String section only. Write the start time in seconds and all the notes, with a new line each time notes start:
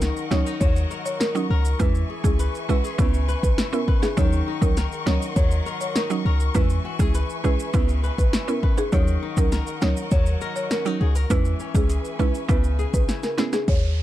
Already playing: A#4 D#5 F#5 C#6
1.80 B4 E5 G#5
2.99 G#5
4.18 A#4 D#5 F#5
6.55 B4 E5 G#5
7.74 G#5
8.93 A#4 D#5 F#5
11.30 B4 E5 G#5
12.49 G#5